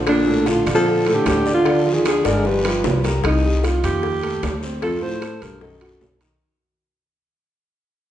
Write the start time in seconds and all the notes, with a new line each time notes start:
Already playing: A#1 D3 D4 F4
0.07 A#2 D4, high bongo, high timbale, long guiro
0.27 A2 A3 A4, high bongo
0.46 D3 F4, high bongo, high timbale, low timbale, short guiro
0.66 A#2 D3 D4 F4, high timbale, short guiro
0.75 F3 A4
0.86 high bongo, long guiro
1.06 A2 A3 A4, high bongo, high timbale
1.14 D3 G4
1.26 D2, high bongo, low bongo, high timbale, low timbale, short guiro
1.46 D3 D4 D5, high bongo, short guiro
1.54 D3 F4
1.65 D3 D4 D5, high bongo, high timbale, long guiro
1.85 F3 F4 G#4, high bongo
1.93 D#3 G#4
2.05 D3 G#4, high bongo, high timbale, low timbale, short guiro
2.25 G1 D3 G#3 D4 A#4 D5, high bongo, high timbale, short guiro
2.45 F3 G3 F4 G4 B4, low bongo, long guiro
2.65 F3 F4 G4, low bongo, high timbale
2.84 C2, low bongo, low timbale, short guiro
3.04 G3 G4 A#4, low bongo, high timbale, short guiro
3.24 C2 D#4, high bongo, high timbale, long guiro
3.44 G3 G4, high bongo
3.63 C2 F4, high bongo, high timbale, low timbale, short guiro
3.83 D#2 F2 F3 F4 G4, high timbale, short guiro
4.03 high bongo, long guiro
4.23 A3 A4, high bongo, high timbale
4.43 D2, high bongo, low bongo, high timbale, low timbale, short guiro
4.63 C4 C5, high bongo, short guiro
4.82 F2 F3 F4 A4, high bongo, high timbale, long guiro
5.02 A2 C5, high bongo
5.22 A3 A4, high bongo, high timbale, low timbale, short guiro
5.41 B1 G2 A#4, high timbale, short guiro
5.61 F#2 D#3 D#4 A4, high bongo
5.81 F#3 F#4, high bongo, high timbale
6.01 B1, high bongo, low bongo, low timbale, short guiro
6.21 D#3 D#4, high bongo, high timbale, short guiro